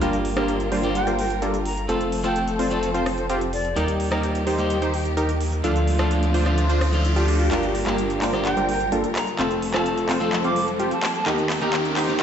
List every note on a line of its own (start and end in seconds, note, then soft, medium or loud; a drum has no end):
0.01 1.87 G1 medium
0.01 0.34 G2 medium
0.01 1.87 G3 medium
0.01 0.16 G3 medium
0.01 0.16 A#3 medium
0.01 0.34 A#3 medium
0.01 0.34 D4 medium
0.01 0.16 D4 medium
0.01 1.87 F4 medium
0.01 0.16 F4 medium
0.01 0.34 F4 medium
0.01 0.34 G4 medium
0.01 1.87 A#4 medium
0.01 0.16 A#4 loud
0.01 closed hi-hat medium
0.13 closed hi-hat soft
0.25 open hi-hat loud
0.36 0.80 G2 medium
0.36 0.51 G3 medium
0.36 0.51 A#3 medium
0.36 0.81 A#3 medium
0.36 0.81 D4 medium
0.36 0.51 D4 medium
0.36 0.51 F4 medium
0.36 0.81 F4 medium
0.36 0.81 G4 loud
0.36 0.51 A#4 medium
0.36 cross-stick medium
0.36 closed hi-hat soft
0.48 closed hi-hat medium
0.60 closed hi-hat soft
0.72 1.04 G3 medium
0.72 1.04 A#3 medium
0.72 1.04 D4 medium
0.72 1.04 F4 medium
0.72 1.04 C5 medium
0.72 open hi-hat loud
0.83 1.02 G2 medium
0.83 1.02 A#3 medium
0.83 1.02 D4 medium
0.83 1.02 F4 medium
0.83 1.02 G4 loud
0.83 closed hi-hat soft
0.95 1.16 G5 medium
0.95 closed hi-hat medium
1.07 1.21 G3 medium
1.07 1.21 A#3 medium
1.07 1.21 D4 medium
1.07 1.21 F4 medium
1.07 1.21 C5 medium
1.07 closed hi-hat soft
1.19 1.39 G5 medium
1.19 open hi-hat loud
1.30 closed hi-hat soft
1.42 1.56 G3 medium
1.42 1.56 A#3 medium
1.42 1.56 D4 medium
1.42 1.56 F4 medium
1.42 1.56 A4 medium
1.42 closed hi-hat medium
1.54 closed hi-hat soft
1.66 1.86 A#5 medium
1.66 open hi-hat loud
1.77 closed hi-hat soft
1.88 3.74 F1 medium
1.88 3.75 F3 medium
1.88 2.21 A3 medium
1.88 2.21 C4 medium
1.88 2.03 C4 medium
1.88 3.75 C4 medium
1.88 2.03 F4 medium
1.88 2.21 F4 medium
1.88 2.03 A4 loud
1.88 3.75 A4 medium
1.88 2.22 A4 medium
1.88 closed hi-hat medium
2.01 closed hi-hat soft
2.12 open hi-hat loud
2.24 2.68 A3 medium
2.24 2.68 C4 medium
2.24 2.38 C4 medium
2.24 2.38 F4 medium
2.24 2.68 F4 medium
2.24 2.38 A4 medium
2.24 2.69 A4 loud
2.24 2.45 G5 medium
2.24 closed hi-hat soft
2.36 closed hi-hat medium
2.48 closed hi-hat soft
2.59 2.92 C4 medium
2.59 2.92 F4 medium
2.59 2.92 C5 medium
2.59 2.67 D5 medium
2.59 open hi-hat loud
2.70 2.89 A3 medium
2.70 2.90 C4 medium
2.70 2.90 F4 medium
2.70 2.90 A4 medium
2.70 2.78 D5 medium
2.70 closed hi-hat soft
2.83 closed hi-hat medium
2.94 3.09 C4 medium
2.94 3.09 F4 medium
2.94 3.09 C5 medium
2.94 closed hi-hat soft
3.06 cross-stick medium
3.06 open hi-hat loud
3.18 3.25 C5 medium
3.18 closed hi-hat soft
3.29 3.44 C4 medium
3.29 3.44 F4 medium
3.29 3.44 G4 medium
3.29 3.37 C5 medium
3.29 closed hi-hat medium
3.41 closed hi-hat soft
3.53 3.81 D5 medium
3.53 open hi-hat loud
3.65 closed hi-hat soft
3.76 5.62 D#2 medium
3.76 5.62 D#3 medium
3.76 4.09 G3 medium
3.76 5.62 A#3 medium
3.76 4.09 A#3 medium
3.76 3.91 D#4 medium
3.76 4.09 D#4 medium
3.76 5.62 G4 medium
3.76 3.91 G4 medium
3.76 4.09 G4 medium
3.76 3.91 A#4 loud
3.76 closed hi-hat medium
3.76 riser medium
3.88 closed hi-hat soft
4.00 open hi-hat loud
4.11 4.55 G3 medium
4.11 4.56 A#3 medium
4.11 4.26 D#4 medium
4.11 4.56 D#4 medium
4.11 4.26 G4 medium
4.11 4.56 G4 medium
4.11 4.26 A#4 medium
4.11 cross-stick medium
4.11 closed hi-hat soft
4.23 closed hi-hat medium
4.35 closed hi-hat soft
4.47 4.79 D#4 medium
4.47 4.79 G4 medium
4.47 4.79 C5 loud
4.47 open hi-hat medium
4.58 4.77 G3 medium
4.58 4.77 A#3 medium
4.58 4.77 D#4 medium
4.58 4.77 G4 medium
4.58 closed hi-hat soft
4.70 closed hi-hat medium
4.82 4.96 D#4 medium
4.82 4.96 G4 medium
4.82 4.96 C5 medium
4.82 closed hi-hat soft
4.94 open hi-hat medium
5.05 closed hi-hat soft
5.17 5.31 D#4 medium
5.17 5.31 G4 medium
5.17 5.31 A#4 medium
5.17 closed hi-hat medium
5.29 closed hi-hat soft
5.41 open hi-hat loud
5.52 closed hi-hat soft
5.63 7.49 D2 medium
5.63 7.50 D3 medium
5.63 5.96 F3 medium
5.63 5.96 A3 medium
5.63 7.50 A3 medium
5.63 5.78 D4 medium
5.63 5.96 D4 medium
5.63 5.78 F4 medium
5.63 7.50 F4 medium
5.63 5.97 F4 medium
5.63 5.78 A4 loud
5.63 closed hi-hat medium
5.76 closed hi-hat soft
5.87 open hi-hat loud
5.99 6.43 F3 medium
5.99 6.43 A3 medium
5.99 6.13 D4 medium
5.99 6.43 D4 medium
5.99 6.13 F4 medium
5.99 6.44 F4 loud
5.99 6.13 A4 medium
5.99 cross-stick medium
5.99 closed hi-hat soft
6.11 closed hi-hat medium
6.23 closed hi-hat soft
6.34 6.67 D4 medium
6.34 6.67 F4 medium
6.34 6.67 C5 loud
6.34 open hi-hat loud
6.45 6.64 F3 loud
6.45 6.65 A3 medium
6.45 6.65 D4 medium
6.45 6.65 F4 loud
6.45 cross-stick medium
6.45 closed hi-hat soft
6.58 closed hi-hat medium
6.69 6.84 D4 medium
6.69 6.84 F4 medium
6.69 6.84 C5 medium
6.69 closed hi-hat soft
6.81 cross-stick medium
6.81 open hi-hat loud
6.92 7.48 F3 medium
6.92 7.48 A3 medium
6.92 7.49 D4 medium
6.92 7.49 F4 medium
6.92 closed hi-hat soft
7.05 closed hi-hat medium
7.16 7.49 D4 medium
7.16 7.49 F4 medium
7.16 7.49 G4 loud
7.16 closed hi-hat soft
7.28 open hi-hat loud
7.40 closed hi-hat soft
7.51 7.84 G1 medium
7.51 7.84 G2 medium
7.51 7.66 G3 medium
7.51 9.37 G3 medium
7.51 7.66 A#3 medium
7.51 7.84 A#3 medium
7.51 7.84 D4 medium
7.51 7.66 D4 medium
7.51 7.66 F4 medium
7.51 9.37 F4 medium
7.51 7.84 F4 medium
7.51 7.84 G4 medium
7.51 7.66 A#4 loud
7.51 9.37 A#4 medium
7.51 clap soft
7.51 closed hi-hat medium
7.51 riser medium
7.63 closed hi-hat soft
7.75 open hi-hat loud
7.86 8.19 G1 medium
7.86 8.30 G2 medium
7.86 8.01 G3 medium
7.86 8.31 A#3 medium
7.86 8.01 A#3 medium
7.86 8.31 D4 medium
7.86 8.01 D4 medium
7.86 8.01 F4 medium
7.86 8.31 F4 medium
7.86 8.31 G4 loud
7.86 8.01 A#4 medium
7.86 clap soft
7.86 closed hi-hat soft
7.98 closed hi-hat medium
8.10 closed hi-hat soft
8.22 8.55 G1 medium
8.22 8.54 G3 medium
8.22 8.54 A#3 medium
8.22 8.54 D4 medium
8.22 8.54 F4 medium
8.22 8.54 C5 loud
8.22 clap medium
8.22 open hi-hat loud
8.33 8.52 G2 loud
8.33 8.52 A#3 medium
8.33 8.52 D4 medium
8.33 8.52 F4 medium
8.33 8.52 G4 loud
8.33 cross-stick medium
8.33 closed hi-hat soft
8.45 8.66 G5 medium
8.45 clap medium
8.45 closed hi-hat medium
8.57 8.90 G1 medium
8.57 8.71 G3 medium
8.57 8.71 A#3 medium
8.57 8.71 D4 medium
8.57 8.71 F4 medium
8.57 8.71 C5 medium
8.57 closed hi-hat soft
8.69 8.89 G5 medium
8.69 open hi-hat loud
8.80 closed hi-hat soft
8.92 9.04 G1 loud
8.92 9.06 G3 medium
8.92 9.06 A#3 medium
8.92 9.06 D4 medium
8.92 9.06 F4 medium
8.92 9.06 A4 medium
8.92 closed hi-hat medium
9.04 closed hi-hat soft
9.16 9.36 A#5 medium
9.16 clap medium
9.16 open hi-hat loud
9.27 closed hi-hat soft
9.38 9.72 F1 medium
9.38 11.25 F3 medium
9.38 9.71 A3 medium
9.38 9.53 C4 medium
9.38 11.25 C4 medium
9.38 9.71 C4 medium
9.38 9.53 F4 medium
9.38 9.71 F4 medium
9.38 9.53 A4 loud
9.38 11.25 A4 medium
9.38 9.72 A4 medium
9.38 clap medium
9.38 closed hi-hat medium
9.51 closed hi-hat soft
9.62 open hi-hat loud
9.73 10.07 F1 medium
9.73 10.18 A3 loud
9.73 9.88 C4 medium
9.73 10.18 C4 medium
9.73 9.88 F4 medium
9.73 10.18 F4 medium
9.73 9.88 A4 medium
9.73 10.19 A4 loud
9.73 9.95 A5 medium
9.73 cross-stick medium
9.73 clap medium
9.73 closed hi-hat soft
9.86 closed hi-hat medium
9.98 closed hi-hat soft
10.09 10.42 F1 medium
10.09 10.42 C4 medium
10.09 10.42 F4 medium
10.09 10.42 C5 medium
10.09 clap medium
10.09 open hi-hat loud
10.20 10.39 A3 loud
10.20 10.40 C4 medium
10.20 10.40 F4 medium
10.20 10.40 A4 loud
10.20 closed hi-hat soft
10.33 clap medium
10.33 closed hi-hat medium
10.44 10.77 F1 medium
10.44 10.59 C4 medium
10.44 10.59 F4 medium
10.44 10.59 C5 medium
10.44 10.65 D6 medium
10.44 closed hi-hat soft
10.56 open hi-hat loud
10.68 closed hi-hat soft
10.80 10.92 F1 medium
10.80 10.94 C4 medium
10.80 10.94 F4 medium
10.80 10.94 G4 loud
10.80 closed hi-hat medium
10.91 11.12 A5 medium
10.91 closed hi-hat soft
11.03 clap medium
11.03 open hi-hat loud
11.15 11.31 A5 medium
11.15 closed hi-hat soft
11.26 11.59 D#2 loud
11.26 11.59 D#3 medium
11.26 12.23 D#3 medium
11.26 11.59 A#3 medium
11.26 12.23 A#3 medium
11.26 11.59 D#4 medium
11.26 11.41 D#4 medium
11.26 11.41 G4 medium
11.26 12.23 G4 medium
11.26 11.59 G4 medium
11.26 11.41 A#4 medium
11.26 11.59 A#4 medium
11.26 clap medium
11.26 closed hi-hat medium
11.38 closed hi-hat soft
11.50 clap medium
11.50 open hi-hat loud
11.61 11.94 D#2 medium
11.61 12.05 D#3 medium
11.61 12.06 A#3 medium
11.61 12.06 D#4 medium
11.61 11.76 D#4 medium
11.61 11.76 G4 medium
11.61 12.06 G4 medium
11.61 11.76 A#4 medium
11.61 12.06 A#4 loud
11.61 closed hi-hat soft
11.73 clap medium
11.73 closed hi-hat medium
11.85 closed hi-hat soft
11.97 12.18 D#2 loud
11.97 12.18 D#4 medium
11.97 12.18 G4 medium
11.97 12.18 C5 medium
11.97 clap medium
11.97 open hi-hat loud
12.08 12.18 D#3 medium
12.08 12.18 A#3 medium
12.08 12.18 D#4 medium
12.08 12.18 G4 medium
12.08 12.19 A#4 loud
12.08 closed hi-hat soft
12.19 12.23 D#3 medium